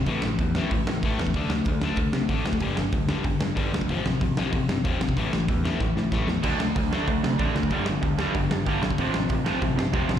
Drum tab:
CC |----------------|----------------|----------------|----------------|
HH |o---o---o---o---|o---o---o---o---|o---o---o---o---|o---o---o---o---|
SD |--o---o---o---o-|--o---o---o---o-|--o---o---o---o-|--o---o---o---o-|
BD |o---o---o---o--o|o---o---o---o--o|o---o---o---o--o|o---o---o---o--o|

CC |----------------|x---------------|----------------|----------------|
HH |o---o-----------|o---o---o---o---|o---o---o---o---|o---o---o---o---|
SD |--o---o-o-o-o-o-|--o---o---o---o-|--o---o---o---o-|--o---o---o---o-|
BD |o---o---o---o---|o---o---o---o--o|o---o---o---o--o|o---o---o---o---|